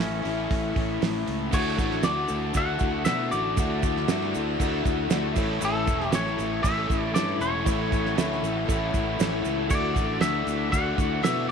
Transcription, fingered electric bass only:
0.00 0.20 A1 medium
0.25 0.46 A1 medium
0.51 0.72 A1 medium
0.76 0.97 A1 medium
1.02 1.23 A1 medium
1.28 1.49 C#2 medium
1.53 1.77 D2 medium
1.79 2.02 A1 medium
2.05 2.28 D2 medium
2.30 2.53 D2 medium
2.55 2.79 D2 loud
2.81 3.04 D2 medium
3.07 3.30 B2 medium
3.33 3.56 A1 medium
3.58 4.05 D2 loud
4.10 4.33 G2 medium
4.35 4.58 D2 medium
4.61 4.84 D2 medium
4.85 5.09 D2 medium
5.11 5.34 D2 medium
5.37 5.60 A1 medium
5.62 5.86 A1 loud
5.87 6.11 E1 medium
6.14 6.37 A1 medium
6.39 6.62 A1 medium
6.64 6.87 A1 loud
6.90 7.13 A1 medium
7.16 7.39 G2 medium
7.41 7.64 E1 medium
7.67 8.14 A1 loud
8.17 8.41 D2 medium
8.43 8.66 A1 medium
8.69 8.92 A1 loud
8.94 9.17 A1 medium
9.20 9.43 A1 medium
9.45 9.68 C#2 medium
9.71 9.94 D2 loud
9.97 10.19 A1 medium
10.22 10.45 D2 medium
10.47 10.70 D2 medium
10.73 10.96 D2 loud
10.98 11.21 D2 medium
11.24 11.47 B2 medium

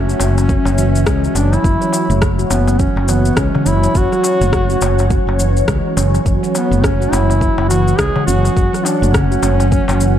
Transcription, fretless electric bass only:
0.00 0.13 F#1 loud
0.20 0.56 F#1 medium
0.66 1.08 F#1 medium
1.06 1.27 C#2 medium
1.35 1.56 F#1 medium
1.64 1.75 F#1 medium
2.10 2.44 F#1 medium
2.50 2.87 F#1 medium
2.96 3.30 F#1 medium
3.37 3.48 C#2 medium
3.66 3.87 F#1 loud
3.95 4.06 F#1 medium
4.41 4.75 F#1 loud
4.81 5.17 F#1 medium
5.27 5.61 F#1 medium
5.68 5.79 C#2 medium
5.97 6.17 F#1 loud
6.26 6.37 F#1 medium
6.71 7.05 F#1 loud
7.12 7.48 F#1 loud
7.58 7.92 F#1 medium
7.99 8.10 C#2 medium
8.28 8.48 F#1 loud
8.56 8.67 F#1 medium
9.02 9.36 F#1 medium
9.42 9.79 F#1 medium
9.89 10.19 F#1 medium

